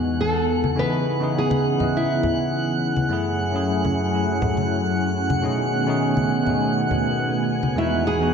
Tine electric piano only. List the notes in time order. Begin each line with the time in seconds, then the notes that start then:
Already playing: E2 E3 G#3 B3 D#4 F#4 D#5
0.75 C#3 B3 D#4 E4 G#4
1.20 C#3 B3 D#4 E4 G#4
1.77 C#3 B3 D#5
1.82 E4 G#4
3.09 F#2 A3 C#4 E4
3.13 G#4
3.52 F#2 A3 C#4 E4 G#4
4.09 F#2 A3 C#4
4.15 E4 G#4
5.42 B2 A3 C#4 D#4 F#4 G#4
5.86 B2 A3 C#4 D#4 F#4 G#4
6.42 B2 A3 C#4
6.47 D#4 F#4 G#4
7.75 E2 G#3 B3 D#4 F#4
8.19 E2 G#3 B3 D#4 F#4